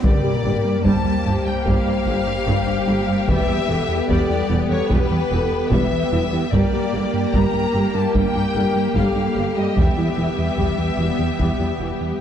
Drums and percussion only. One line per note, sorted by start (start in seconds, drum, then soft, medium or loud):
0.04 taiko loud
0.85 taiko medium
1.66 taiko medium
2.47 taiko medium
3.28 taiko medium
4.09 taiko medium
4.91 taiko medium
5.72 taiko medium
6.53 taiko medium
7.34 taiko medium
8.15 taiko medium
8.96 taiko medium
9.77 taiko medium
10.58 taiko medium
11.39 taiko medium